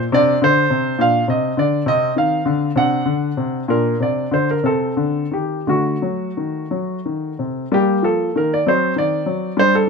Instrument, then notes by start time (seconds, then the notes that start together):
grand piano
0.12 C3 D4 D5
0.42 D3 C5
0.70 C3
0.99 A#2 D4 F5
1.28 C3 D#5
1.57 D3 D5
1.86 C3 C4 D#5
2.16 D#3 F5
2.46 D3
2.76 C3 D4 F#5
3.06 D3
3.37 C3
3.68 A#2 D4 A#4
4.00 C3 D5
4.31 D3 C5
4.51 A#4
4.63 C3 C4 A4
4.97 D3
5.31 D#3 G4
5.67 D3 A3 F#4
6.02 F#3
6.37 D#3
6.71 F#3
7.05 D#3
7.39 C3
7.72 G3 A#3 G4
8.03 F3 A4
8.35 D#3 A#4
8.54 D5
8.67 F#3 C4 C5
8.96 D#3 D5
9.26 F#3
9.57 G3 D4 C5
9.75 A4